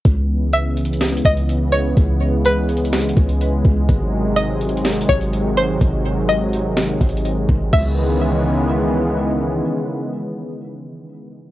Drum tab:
CC |------------------------------------------------|------------------------------------------------|------------------------------------------------|------------------------------------------------|
HH |x-----------x-----x-x-x-x-x-x-x--x--x-----------|x-----------x-----x-x-x-x-x-x-x--x--x-----------|x-----------x-----x-x-x-x-x-x-x--x--x-----------|x-----------x-----x-----x-----x-x-x-x-----------|
SD |------------------------o-----------------------|------------------------o-----------------------|------------------------o-----------------------|------------------------o-----------------------|
BD |o-----------------------------o-----------------|o-----------------------------o-----------o-----|o-----------------------------o-----------------|o-----------------------------o-----------o-----|

CC |x-----------------------------------------------|------------------------------------------------|
HH |------------------------------------------------|------------------------------------------------|
SD |------------------------------------------------|------------------------------------------------|
BD |o-----------------------------------------------|------------------------------------------------|